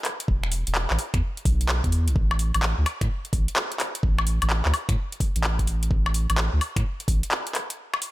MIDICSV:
0, 0, Header, 1, 3, 480
1, 0, Start_track
1, 0, Tempo, 468750
1, 290, Time_signature, 4, 2, 24, 8
1, 8310, End_track
2, 0, Start_track
2, 0, Title_t, "Sub bass"
2, 0, Program_c, 0, 38
2, 288, Note_on_c, 0, 28, 98
2, 656, Note_off_c, 0, 28, 0
2, 686, Note_on_c, 0, 28, 92
2, 889, Note_off_c, 0, 28, 0
2, 927, Note_on_c, 0, 33, 94
2, 1000, Note_off_c, 0, 33, 0
2, 1166, Note_on_c, 0, 40, 91
2, 1239, Note_off_c, 0, 40, 0
2, 1488, Note_on_c, 0, 35, 98
2, 1856, Note_off_c, 0, 35, 0
2, 1885, Note_on_c, 0, 40, 105
2, 2126, Note_on_c, 0, 35, 88
2, 2141, Note_off_c, 0, 40, 0
2, 2199, Note_off_c, 0, 35, 0
2, 2209, Note_on_c, 0, 33, 104
2, 2576, Note_off_c, 0, 33, 0
2, 2606, Note_on_c, 0, 33, 91
2, 2809, Note_off_c, 0, 33, 0
2, 2846, Note_on_c, 0, 38, 93
2, 2920, Note_off_c, 0, 38, 0
2, 3086, Note_on_c, 0, 45, 91
2, 3159, Note_off_c, 0, 45, 0
2, 3408, Note_on_c, 0, 33, 91
2, 3547, Note_off_c, 0, 33, 0
2, 4128, Note_on_c, 0, 33, 94
2, 4496, Note_off_c, 0, 33, 0
2, 4526, Note_on_c, 0, 33, 92
2, 4729, Note_off_c, 0, 33, 0
2, 4765, Note_on_c, 0, 38, 92
2, 4839, Note_off_c, 0, 38, 0
2, 5005, Note_on_c, 0, 45, 90
2, 5079, Note_off_c, 0, 45, 0
2, 5484, Note_on_c, 0, 33, 92
2, 6033, Note_off_c, 0, 33, 0
2, 6049, Note_on_c, 0, 33, 98
2, 6416, Note_off_c, 0, 33, 0
2, 6445, Note_on_c, 0, 33, 93
2, 6649, Note_off_c, 0, 33, 0
2, 6687, Note_on_c, 0, 38, 92
2, 6760, Note_off_c, 0, 38, 0
2, 6926, Note_on_c, 0, 45, 94
2, 7000, Note_off_c, 0, 45, 0
2, 7249, Note_on_c, 0, 33, 97
2, 7387, Note_off_c, 0, 33, 0
2, 8310, End_track
3, 0, Start_track
3, 0, Title_t, "Drums"
3, 49, Note_on_c, 9, 39, 59
3, 49, Note_on_c, 9, 46, 83
3, 151, Note_off_c, 9, 39, 0
3, 151, Note_off_c, 9, 46, 0
3, 206, Note_on_c, 9, 42, 59
3, 289, Note_on_c, 9, 36, 114
3, 308, Note_off_c, 9, 42, 0
3, 391, Note_off_c, 9, 36, 0
3, 445, Note_on_c, 9, 26, 55
3, 528, Note_on_c, 9, 46, 97
3, 548, Note_off_c, 9, 26, 0
3, 631, Note_off_c, 9, 46, 0
3, 686, Note_on_c, 9, 42, 60
3, 769, Note_on_c, 9, 39, 119
3, 788, Note_off_c, 9, 42, 0
3, 871, Note_off_c, 9, 39, 0
3, 926, Note_on_c, 9, 39, 60
3, 1009, Note_on_c, 9, 46, 85
3, 1029, Note_off_c, 9, 39, 0
3, 1112, Note_off_c, 9, 46, 0
3, 1166, Note_on_c, 9, 26, 64
3, 1166, Note_on_c, 9, 36, 104
3, 1166, Note_on_c, 9, 42, 61
3, 1268, Note_off_c, 9, 36, 0
3, 1269, Note_off_c, 9, 26, 0
3, 1269, Note_off_c, 9, 42, 0
3, 1406, Note_on_c, 9, 42, 36
3, 1489, Note_on_c, 9, 36, 109
3, 1490, Note_on_c, 9, 46, 100
3, 1509, Note_off_c, 9, 42, 0
3, 1591, Note_off_c, 9, 36, 0
3, 1592, Note_off_c, 9, 46, 0
3, 1647, Note_on_c, 9, 42, 59
3, 1729, Note_on_c, 9, 39, 119
3, 1749, Note_off_c, 9, 42, 0
3, 1832, Note_off_c, 9, 39, 0
3, 1885, Note_on_c, 9, 36, 58
3, 1886, Note_on_c, 9, 42, 52
3, 1969, Note_on_c, 9, 46, 83
3, 1988, Note_off_c, 9, 36, 0
3, 1989, Note_off_c, 9, 42, 0
3, 2072, Note_off_c, 9, 46, 0
3, 2126, Note_on_c, 9, 42, 64
3, 2209, Note_on_c, 9, 36, 116
3, 2228, Note_off_c, 9, 42, 0
3, 2311, Note_off_c, 9, 36, 0
3, 2366, Note_on_c, 9, 26, 52
3, 2366, Note_on_c, 9, 76, 61
3, 2449, Note_on_c, 9, 46, 92
3, 2468, Note_off_c, 9, 26, 0
3, 2468, Note_off_c, 9, 76, 0
3, 2552, Note_off_c, 9, 46, 0
3, 2606, Note_on_c, 9, 42, 61
3, 2606, Note_on_c, 9, 76, 58
3, 2689, Note_on_c, 9, 39, 115
3, 2708, Note_off_c, 9, 42, 0
3, 2708, Note_off_c, 9, 76, 0
3, 2791, Note_off_c, 9, 39, 0
3, 2930, Note_on_c, 9, 26, 62
3, 2930, Note_on_c, 9, 46, 84
3, 2930, Note_on_c, 9, 76, 79
3, 3032, Note_off_c, 9, 26, 0
3, 3032, Note_off_c, 9, 46, 0
3, 3032, Note_off_c, 9, 76, 0
3, 3085, Note_on_c, 9, 36, 102
3, 3086, Note_on_c, 9, 26, 67
3, 3086, Note_on_c, 9, 42, 66
3, 3188, Note_off_c, 9, 36, 0
3, 3189, Note_off_c, 9, 26, 0
3, 3189, Note_off_c, 9, 42, 0
3, 3327, Note_on_c, 9, 42, 37
3, 3408, Note_on_c, 9, 36, 105
3, 3409, Note_on_c, 9, 46, 101
3, 3429, Note_off_c, 9, 42, 0
3, 3511, Note_off_c, 9, 36, 0
3, 3511, Note_off_c, 9, 46, 0
3, 3566, Note_on_c, 9, 42, 65
3, 3649, Note_on_c, 9, 39, 118
3, 3669, Note_off_c, 9, 42, 0
3, 3751, Note_off_c, 9, 39, 0
3, 3806, Note_on_c, 9, 42, 54
3, 3889, Note_on_c, 9, 39, 59
3, 3889, Note_on_c, 9, 46, 86
3, 3909, Note_off_c, 9, 42, 0
3, 3991, Note_off_c, 9, 39, 0
3, 3991, Note_off_c, 9, 46, 0
3, 4045, Note_on_c, 9, 42, 62
3, 4128, Note_on_c, 9, 36, 109
3, 4148, Note_off_c, 9, 42, 0
3, 4231, Note_off_c, 9, 36, 0
3, 4285, Note_on_c, 9, 26, 53
3, 4285, Note_on_c, 9, 76, 62
3, 4369, Note_on_c, 9, 46, 98
3, 4388, Note_off_c, 9, 26, 0
3, 4388, Note_off_c, 9, 76, 0
3, 4471, Note_off_c, 9, 46, 0
3, 4525, Note_on_c, 9, 42, 66
3, 4525, Note_on_c, 9, 76, 61
3, 4609, Note_on_c, 9, 39, 108
3, 4628, Note_off_c, 9, 42, 0
3, 4628, Note_off_c, 9, 76, 0
3, 4711, Note_off_c, 9, 39, 0
3, 4766, Note_on_c, 9, 39, 59
3, 4850, Note_on_c, 9, 46, 86
3, 4850, Note_on_c, 9, 76, 79
3, 4868, Note_off_c, 9, 39, 0
3, 4952, Note_off_c, 9, 46, 0
3, 4952, Note_off_c, 9, 76, 0
3, 5005, Note_on_c, 9, 36, 98
3, 5007, Note_on_c, 9, 26, 61
3, 5007, Note_on_c, 9, 42, 64
3, 5107, Note_off_c, 9, 36, 0
3, 5109, Note_off_c, 9, 26, 0
3, 5109, Note_off_c, 9, 42, 0
3, 5247, Note_on_c, 9, 42, 39
3, 5328, Note_on_c, 9, 36, 100
3, 5330, Note_on_c, 9, 46, 101
3, 5349, Note_off_c, 9, 42, 0
3, 5431, Note_off_c, 9, 36, 0
3, 5433, Note_off_c, 9, 46, 0
3, 5486, Note_on_c, 9, 42, 68
3, 5570, Note_on_c, 9, 39, 114
3, 5589, Note_off_c, 9, 42, 0
3, 5672, Note_off_c, 9, 39, 0
3, 5725, Note_on_c, 9, 36, 52
3, 5728, Note_on_c, 9, 42, 55
3, 5810, Note_on_c, 9, 46, 87
3, 5828, Note_off_c, 9, 36, 0
3, 5830, Note_off_c, 9, 42, 0
3, 5913, Note_off_c, 9, 46, 0
3, 5967, Note_on_c, 9, 42, 65
3, 6049, Note_on_c, 9, 36, 109
3, 6070, Note_off_c, 9, 42, 0
3, 6151, Note_off_c, 9, 36, 0
3, 6207, Note_on_c, 9, 26, 52
3, 6207, Note_on_c, 9, 76, 64
3, 6291, Note_on_c, 9, 46, 100
3, 6309, Note_off_c, 9, 26, 0
3, 6309, Note_off_c, 9, 76, 0
3, 6393, Note_off_c, 9, 46, 0
3, 6448, Note_on_c, 9, 42, 67
3, 6448, Note_on_c, 9, 76, 64
3, 6532, Note_on_c, 9, 39, 109
3, 6551, Note_off_c, 9, 42, 0
3, 6551, Note_off_c, 9, 76, 0
3, 6634, Note_off_c, 9, 39, 0
3, 6770, Note_on_c, 9, 46, 92
3, 6770, Note_on_c, 9, 76, 77
3, 6873, Note_off_c, 9, 46, 0
3, 6873, Note_off_c, 9, 76, 0
3, 6926, Note_on_c, 9, 36, 94
3, 6928, Note_on_c, 9, 26, 65
3, 6928, Note_on_c, 9, 42, 69
3, 7028, Note_off_c, 9, 36, 0
3, 7030, Note_off_c, 9, 26, 0
3, 7030, Note_off_c, 9, 42, 0
3, 7168, Note_on_c, 9, 42, 37
3, 7249, Note_on_c, 9, 36, 97
3, 7251, Note_on_c, 9, 46, 102
3, 7271, Note_off_c, 9, 42, 0
3, 7352, Note_off_c, 9, 36, 0
3, 7353, Note_off_c, 9, 46, 0
3, 7406, Note_on_c, 9, 42, 68
3, 7490, Note_on_c, 9, 39, 109
3, 7509, Note_off_c, 9, 42, 0
3, 7592, Note_off_c, 9, 39, 0
3, 7646, Note_on_c, 9, 42, 55
3, 7730, Note_on_c, 9, 39, 59
3, 7730, Note_on_c, 9, 46, 89
3, 7749, Note_off_c, 9, 42, 0
3, 7832, Note_off_c, 9, 39, 0
3, 7832, Note_off_c, 9, 46, 0
3, 7886, Note_on_c, 9, 42, 67
3, 7989, Note_off_c, 9, 42, 0
3, 8126, Note_on_c, 9, 26, 59
3, 8126, Note_on_c, 9, 76, 61
3, 8210, Note_on_c, 9, 46, 109
3, 8229, Note_off_c, 9, 26, 0
3, 8229, Note_off_c, 9, 76, 0
3, 8310, Note_off_c, 9, 46, 0
3, 8310, End_track
0, 0, End_of_file